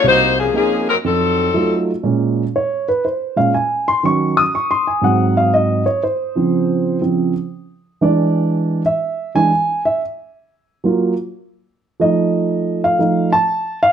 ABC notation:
X:1
M:4/4
L:1/8
Q:"Swing" 1/4=120
K:Bbm
V:1 name="Grand piano"
z8 | z2 d _c =c f a c' | d' e' (3d' c' a g f e d | c4 z4 |
=d3 =e2 ^g2 e | z8 | e3 f2 =a2 f |]
V:2 name="Grand piano" clef=bass
C,,2 [B,CE] z F,,2 [G,=A,EF] z | [B,,A,D] z4 [B,,A,D] z2 | [E,G,D] z3 [A,,G,C]3 z | z [D,F,C]3 [D,F,C] z3 |
[=E,^G,=D]3 z2 [E,G,D] z2 | z3 [G,B,F] z4 | [F,=A,E]4 [F,A,E] z3 |]
V:3 name="Saxophone section"
[B,EGc] [F,B,DA] [F,B,DA] [G,CEB] [G,CE=A]3 z | z8 | z8 | z8 |
z8 | z8 | z8 |]